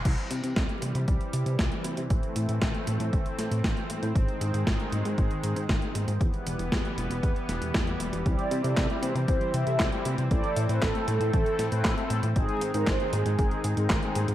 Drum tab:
CC |x---------------|----------------|----------------|----------------|
HH |xxxxxxxxxxxxxxxx|xxxxxxxxxxxxxxxx|xxxxxxxxxxxxxxxx|xxxxxxxxxxxxxxxx|
CP |----------------|----------------|----------------|----------------|
SD |----o-------o---|----o-----o-o---|----o-------o---|----o-----o-o---|
BD |o---o---o---o---|o---o---o---o---|o---o---o---o---|o---o---o---o---|

CC |----------------|----------------|----------------|
HH |xxxxxxxxxxxxxxxx|xxxxxxxxxxxxxxxx|xxxxxxxxxxxxxxxx|
CP |----x-------x---|----x-------x---|----x-------x---|
SD |----o-------o---|----o-----o-o---|----o-------o---|
BD |o---o---o---o---|o---o---o---o---|o---o---o---o---|